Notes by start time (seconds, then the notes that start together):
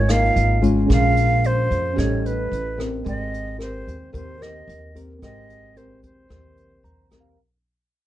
Already playing: G#1 G#3 D#4 A#4 C#5 F5
0.09 A#3 D#4 F4 F5, cross-stick, closed hi-hat
0.36 G#1, closed hi-hat
0.61 G#3 C#4 F4, kick, closed hi-hat
0.86 A#1 A#2 C#4 G#4, kick, cross-stick, closed hi-hat
0.90 A#4 F5
1.17 closed hi-hat
1.44 C5, closed hi-hat
1.71 F2, kick, closed hi-hat
1.93 A2 G3 C#4 G4
1.98 A1 D#4 A4 C#5 D#5, kick, cross-stick, closed hi-hat
2.26 B4, closed hi-hat
2.52 A1, closed hi-hat
2.78 C4 G4 A#4, kick, cross-stick, closed hi-hat
3.03 G#1 G#3 C4 A#4, kick, closed hi-hat
3.08 D#5 G5
3.34 closed hi-hat
3.58 C4 G4 A#4 C5, cross-stick, closed hi-hat
3.87 D#2, kick, closed hi-hat
4.13 D#2 D#3 C4 G4 A#4 C5, kick, closed hi-hat
4.40 C4 G4 A#4 D#5, cross-stick, closed hi-hat
4.68 D#2, closed hi-hat
4.95 C4 G4 A#4, kick, closed hi-hat
5.19 G#1 G#3 C4 G4 A#4 D#5, kick, cross-stick, closed hi-hat
5.23 A#4 G5
5.50 closed hi-hat
5.76 C4 G4 A#4 C5, closed hi-hat
6.03 D#2 C5, kick, closed hi-hat
6.29 D#2 D#3 C4 G4 A#4, kick, cross-stick, closed hi-hat
6.58 closed hi-hat
6.84 D#2 A#5, closed hi-hat
7.11 C4 G4 A#4, kick, cross-stick, closed hi-hat
7.20 F5